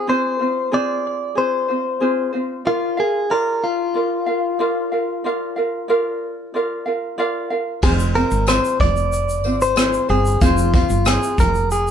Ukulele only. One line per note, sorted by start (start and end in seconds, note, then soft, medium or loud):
0.07 0.40 C4 medium
0.07 0.39 F4 medium
0.07 0.40 G#4 medium
0.07 0.38 C5 medium
0.39 0.71 C4 soft
0.39 0.72 F4 soft
0.39 0.72 C5 soft
0.72 1.35 C4 medium
0.72 1.37 F4 medium
0.72 1.34 G#4 medium
0.72 1.37 C5 medium
1.35 1.69 C4 soft
1.35 1.68 F4 medium
1.35 1.68 G#4 medium
1.35 1.67 C5 medium
1.68 2.00 C4 soft
1.68 2.00 F4 soft
1.68 2.01 C5 soft
2.00 2.34 C4 medium
2.00 2.33 F4 medium
2.00 2.33 G#4 medium
2.00 2.31 C5 medium
2.33 2.65 C4 soft
2.33 2.64 F4 soft
2.33 2.66 C5 soft
2.65 2.98 F4 medium
2.65 2.97 A#4 medium
2.65 2.98 D5 medium
2.65 2.96 F5 medium
2.97 3.30 F4 soft
2.97 3.30 A#4 soft
2.97 3.30 F5 soft
3.30 3.95 F4 medium
3.30 3.95 A#4 medium
3.30 3.93 D5 medium
3.30 3.96 F5 medium
3.94 4.28 F4 soft
3.94 4.27 A#4 soft
3.94 4.27 D5 soft
3.94 4.25 F5 medium
4.26 4.59 F4 soft
4.26 4.59 A#4 soft
4.26 4.59 F5 soft
4.59 4.93 F4 medium
4.59 4.92 A#4 medium
4.59 4.92 D5 medium
4.59 4.91 F5 medium
4.92 5.24 F4 soft
4.92 5.24 A#4 soft
4.92 5.25 F5 soft
5.24 5.57 F4 medium
5.24 5.56 A#4 medium
5.24 5.57 D5 medium
5.24 5.55 F5 medium
5.56 5.88 F4 soft
5.56 5.88 A#4 soft
5.56 5.89 F5 soft
5.88 6.54 F4 medium
5.88 6.54 A#4 medium
5.88 6.53 D5 medium
5.88 6.56 F5 medium
6.54 6.87 F4 medium
6.54 6.86 A#4 medium
6.54 6.86 D5 soft
6.54 6.85 F5 medium
6.86 7.17 F4 soft
6.86 7.18 A#4 soft
6.86 7.18 F5 soft
7.18 7.51 F4 medium
7.18 7.50 A#4 medium
7.18 7.51 D5 medium
7.18 7.49 F5 medium
7.50 7.83 F4 soft
7.50 7.84 A#4 soft
7.50 7.83 F5 soft
7.83 8.16 C4 medium
7.83 8.15 F4 medium
7.83 8.15 G#4 medium
7.83 8.14 C5 medium
8.15 8.47 C4 soft
8.15 8.48 F4 soft
8.15 8.48 C5 soft
8.47 9.45 C4 medium
8.47 9.46 F4 soft
8.47 9.44 G#4 soft
8.47 9.43 C5 medium
9.45 9.76 C4 soft
9.45 9.77 F4 soft
9.45 9.77 C5 soft
9.76 10.09 C4 medium
9.76 10.09 F4 medium
9.76 10.09 G#4 medium
9.76 10.07 C5 medium
10.09 10.40 C4 soft
10.09 10.41 F4 soft
10.09 10.41 C5 soft
10.41 10.74 C4 medium
10.41 10.73 F4 medium
10.41 10.74 G#4 medium
10.41 10.72 C5 medium
10.73 11.05 C4 soft
10.73 11.06 F4 soft
10.73 11.06 C5 soft
11.06 11.91 C4 soft
11.06 11.91 F4 medium
11.06 11.91 G#4 medium
11.06 11.91 C5 medium